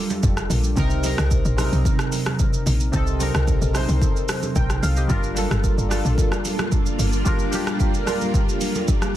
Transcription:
0.00 0.79 G3 loud
0.00 0.80 D4 medium
0.00 0.79 F4 medium
0.00 0.79 G4 loud
0.00 0.79 A4 loud
0.10 high conga medium
0.10 shaker soft
0.23 0.48 F1 loud
0.23 kick loud
0.23 high conga medium
0.23 shaker medium
0.37 cross-stick medium
0.37 shaker medium
0.50 0.75 A#1 loud
0.50 open hi-hat medium
0.50 high conga medium
0.50 low conga medium
0.50 shaker medium
0.64 shaker medium
0.76 1.15 C2 loud
0.76 0.98 C3 medium
0.76 0.99 C4 medium
0.76 0.99 D#4 medium
0.76 1.00 A#4 loud
0.76 kick loud
0.76 low conga medium
0.76 shaker medium
0.90 shaker soft
1.03 1.47 C3 loud
1.03 1.48 C4 medium
1.03 1.48 D#4 medium
1.03 1.49 A#4 loud
1.03 open hi-hat medium
1.03 high conga medium
1.03 shaker loud
1.18 1.43 C2 loud
1.18 cross-stick loud
1.18 shaker medium
1.31 kick loud
1.31 shaker medium
1.45 1.70 A#1 loud
1.45 shaker medium
1.57 2.44 C3 medium
1.57 2.45 C4 medium
1.57 2.45 D#4 medium
1.57 2.46 A#4 loud
1.57 cross-stick medium
1.57 open hi-hat medium
1.57 high conga medium
1.57 shaker loud
1.72 1.84 C2 medium
1.72 high conga medium
1.72 shaker soft
1.85 kick loud
1.85 low conga medium
1.85 shaker medium
1.99 cross-stick loud
1.99 shaker medium
2.12 open hi-hat medium
2.12 high conga medium
2.12 shaker medium
2.26 cross-stick loud
2.26 high conga medium
2.26 shaker soft
2.39 kick loud
2.39 high conga medium
2.39 shaker medium
2.53 shaker medium
2.66 2.91 A#1 medium
2.66 open hi-hat medium
2.66 high conga medium
2.66 low conga medium
2.66 shaker loud
2.80 shaker medium
2.92 3.31 C2 loud
2.92 3.15 C3 medium
2.92 3.15 C4 medium
2.92 3.16 D#4 medium
2.92 3.16 A4 loud
2.92 kick loud
2.92 low conga medium
2.92 shaker medium
3.07 shaker soft
3.19 3.63 C3 medium
3.19 3.64 C4 medium
3.19 3.65 D#4 medium
3.19 3.65 A#4 loud
3.19 open hi-hat medium
3.19 high conga medium
3.19 shaker loud
3.34 3.59 C2 loud
3.34 cross-stick loud
3.34 shaker medium
3.48 kick loud
3.48 shaker medium
3.62 3.86 A#1 medium
3.62 shaker medium
3.73 4.60 C3 medium
3.73 4.61 C4 medium
3.73 4.62 D#4 medium
3.73 4.57 C5 loud
3.73 cross-stick medium
3.73 open hi-hat medium
3.73 high conga medium
3.73 shaker loud
3.89 4.00 C2 medium
3.89 high conga medium
3.89 shaker soft
4.02 kick loud
4.02 low conga medium
4.02 shaker medium
4.16 shaker medium
4.29 cross-stick loud
4.29 open hi-hat medium
4.29 high conga medium
4.29 shaker medium
4.43 high conga medium
4.43 shaker soft
4.56 4.80 A#1 medium
4.56 4.82 A#4 medium
4.56 5.06 G5 medium
4.56 kick loud
4.56 high conga medium
4.56 shaker medium
4.70 cross-stick medium
4.70 shaker medium
4.82 5.07 C2 loud
4.82 4.96 A4 medium
4.82 4.96 F5 medium
4.82 open hi-hat medium
4.82 high conga medium
4.82 low conga medium
4.82 shaker loud
4.96 5.23 G4 medium
4.96 5.22 D#5 medium
4.96 shaker medium
5.08 5.47 G1 loud
5.08 5.31 G3 medium
5.08 9.17 G3 medium
5.08 9.17 A#3 loud
5.08 5.31 D4 medium
5.08 9.17 D4 medium
5.08 9.17 F4 medium
5.08 5.32 F4 medium
5.08 5.32 A#4 loud
5.08 kick loud
5.08 low conga medium
5.08 shaker medium
5.23 shaker soft
5.35 5.79 G3 medium
5.35 5.80 D4 medium
5.35 5.81 F4 medium
5.35 5.81 A4 loud
5.35 open hi-hat medium
5.35 high conga medium
5.35 shaker loud
5.51 5.75 G1 loud
5.51 cross-stick loud
5.51 shaker soft
5.64 kick loud
5.64 shaker medium
5.78 6.02 G1 medium
5.78 shaker medium
5.89 6.77 G3 medium
5.89 6.77 D4 medium
5.89 6.78 F4 medium
5.89 6.78 A4 loud
5.89 cross-stick medium
5.89 open hi-hat medium
5.89 high conga medium
5.89 shaker loud
6.05 6.17 A#1 loud
6.05 high conga medium
6.05 shaker medium
6.18 kick loud
6.18 low conga medium
6.18 shaker medium
6.32 cross-stick medium
6.32 shaker medium
6.45 open hi-hat medium
6.45 high conga medium
6.45 shaker medium
6.59 cross-stick loud
6.59 high conga medium
6.59 shaker soft
6.72 kick loud
6.72 high conga medium
6.72 shaker medium
6.86 shaker medium
6.99 7.23 G1 medium
6.99 open hi-hat medium
6.99 high conga medium
6.99 low conga medium
6.99 shaker loud
7.13 shaker medium
7.24 7.47 G3 loud
7.24 7.48 D4 medium
7.24 7.48 F4 medium
7.24 7.49 A#4 loud
7.24 kick loud
7.24 low conga medium
7.24 shaker medium
7.39 shaker medium
7.51 7.96 G3 medium
7.51 7.96 D4 medium
7.51 7.97 F4 medium
7.51 7.98 G4 loud
7.51 open hi-hat medium
7.51 high conga medium
7.51 shaker loud
7.67 cross-stick loud
7.67 shaker soft
7.80 kick loud
7.80 shaker medium
7.94 shaker medium
8.05 8.93 G3 medium
8.05 8.93 D4 medium
8.05 8.94 F4 medium
8.05 8.95 A#4 loud
8.05 cross-stick medium
8.05 open hi-hat medium
8.05 high conga medium
8.05 shaker loud
8.21 high conga medium
8.21 shaker soft
8.34 kick loud
8.34 low conga medium
8.34 shaker medium
8.49 shaker medium
8.61 open hi-hat medium
8.61 high conga medium
8.61 shaker medium
8.75 high conga medium
8.75 shaker soft
8.88 kick loud
8.88 high conga medium
8.88 shaker medium
9.02 cross-stick medium
9.02 shaker medium

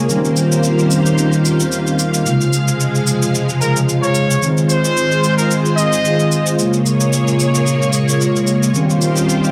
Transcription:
0.00 2.22 A#3 medium
0.09 2.23 D#3 medium
0.09 2.24 D#3 medium
0.09 2.23 G3 medium
0.09 2.23 C4 medium
0.09 2.23 C#4 medium
0.09 2.24 F4 medium
0.09 2.24 G4 medium
0.09 2.24 C5 medium
0.09 4.38 F5 medium
0.09 shaker soft
0.25 shaker soft
0.36 shaker medium
0.52 shaker medium
0.52 shaker soft
0.63 shaker medium
0.63 shaker soft
0.78 shaker soft
0.91 shaker medium
1.05 shaker soft
1.05 shaker medium
1.18 shaker soft
1.32 shaker soft
1.45 shaker medium
1.60 shaker soft
1.60 shaker medium
1.72 shaker soft
1.86 shaker soft
1.99 shaker medium
2.14 shaker soft
2.14 shaker medium
2.25 4.40 C3 medium
2.25 4.39 C#3 medium
2.25 4.40 F3 medium
2.25 4.39 G#3 medium
2.25 4.40 G#3 medium
2.25 4.40 F4 medium
2.25 shaker soft
2.25 shaker medium
2.41 shaker soft
2.53 shaker medium
2.68 shaker soft
2.68 shaker medium
2.80 shaker soft
2.95 shaker soft
3.07 shaker medium
3.22 shaker medium
3.22 shaker soft
3.35 shaker soft
3.49 shaker soft
3.61 3.78 A#4 medium
3.61 shaker medium
3.76 shaker soft
3.76 shaker medium
3.89 shaker soft
4.02 4.48 C#5 medium
4.02 shaker soft
4.15 shaker medium
4.30 shaker soft
4.30 shaker medium
4.42 6.55 D#3 medium
4.42 6.56 G#3 medium
4.42 6.56 C4 medium
4.42 6.56 F4 medium
4.42 6.56 C5 medium
4.42 shaker soft
4.42 shaker medium
4.57 shaker soft
4.69 5.35 C5 medium
4.69 shaker medium
4.85 shaker soft
4.85 shaker medium
4.97 shaker soft
4.97 shaker medium
5.12 shaker soft
5.24 shaker medium
5.37 5.52 A#4 medium
5.37 shaker soft
5.37 shaker medium
5.51 shaker soft
5.51 shaker medium
5.65 shaker soft
5.76 6.53 D#5 loud
5.76 shaker medium
5.92 shaker soft
5.92 shaker medium
6.05 shaker soft
6.20 shaker soft
6.32 shaker medium
6.46 shaker soft
6.46 shaker medium
6.57 8.71 C#3 medium
6.57 8.72 G#3 medium
6.57 9.52 A#3 medium
6.57 8.72 A#3 medium
6.57 8.72 F4 medium
6.57 8.73 G#4 medium
6.57 8.72 C#5 medium
6.57 shaker medium
6.57 shaker soft
6.73 shaker soft
6.86 shaker medium
7.00 shaker medium
7.00 shaker soft
7.13 shaker soft
7.13 shaker medium
7.28 shaker soft
7.39 shaker medium
7.54 shaker soft
7.54 shaker medium
7.66 shaker soft
7.66 shaker medium
7.82 shaker soft
7.93 shaker medium
8.08 shaker soft
8.08 shaker medium
8.21 shaker soft
8.36 shaker soft
8.47 shaker medium
8.62 shaker soft
8.62 shaker medium
8.74 9.52 D#3 medium
8.74 9.52 G3 medium
8.74 9.52 C4 medium
8.74 9.52 C#4 medium
8.74 9.52 F4 medium
8.74 9.52 G4 medium
8.74 9.52 C5 medium
8.74 shaker soft
8.74 shaker medium
8.89 shaker soft
9.01 shaker medium
9.16 shaker soft
9.16 shaker medium
9.29 shaker soft
9.29 shaker medium
9.43 shaker soft

